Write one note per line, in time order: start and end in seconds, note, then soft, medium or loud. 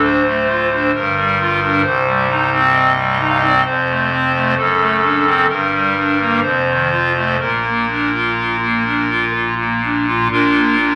0.00 0.91 D1 medium
0.00 0.91 D2 medium
0.00 0.22 D4 medium
0.00 0.92 C5 loud
0.27 0.47 A3 soft
0.49 0.70 F4 medium
0.73 0.92 D4 soft
0.95 1.82 G1 medium
0.95 1.82 G2 medium
0.95 1.82 A#4 medium
1.17 1.38 G3 medium
1.40 1.60 F4 medium
1.62 1.81 D4 medium
1.83 3.61 C1 medium
1.83 3.61 C2 medium
1.83 2.71 C5 loud
2.06 2.27 G3 medium
2.29 2.49 D#4 medium
2.52 2.92 C4 medium
2.73 3.27 D#5 loud
2.96 3.17 G3 medium
3.19 3.40 D#4 medium
3.28 3.37 F5 medium
3.37 3.45 D#5 loud
3.41 3.61 C4 medium
3.47 3.55 D5 loud
3.57 3.64 D#5 medium
3.65 4.54 F1 medium
3.65 4.54 F2 medium
3.65 4.54 C5 loud
3.89 4.09 A3 medium
4.12 4.32 C4 medium
4.35 4.54 A3 medium
4.57 5.47 F#1 medium
4.57 5.46 F#2 medium
4.57 5.47 A4 loud
4.80 5.01 A3 medium
5.03 5.24 D4 medium
5.26 5.46 C4 medium
5.49 6.40 G1 medium
5.49 6.40 G2 medium
5.49 6.40 A#4 loud
5.72 5.93 G3 medium
5.96 6.17 D4 medium
6.20 6.40 A#3 medium
6.43 7.36 F1 medium
6.43 7.36 F2 medium
6.43 7.36 C5 medium
6.67 6.89 D#3 medium
6.91 7.13 F4 medium
7.16 7.36 A3 medium
7.40 10.28 A#1 medium
7.40 10.28 A#2 medium
7.40 9.31 A#4 medium
7.65 7.86 A#3 soft
7.89 8.11 D4 soft
8.14 8.57 F4 medium
8.62 8.83 A#3 soft
8.86 9.08 D4 medium
9.10 9.54 F4 soft
9.59 9.81 A#3 soft
9.84 10.05 D4 medium
10.08 10.28 F4 soft
10.32 10.95 A#1 medium
10.32 10.95 A#2 medium
10.32 10.75 D4 medium
10.32 10.95 F4 medium
10.32 10.95 A#4 loud
10.55 10.76 A#3 medium
10.77 10.95 D4 medium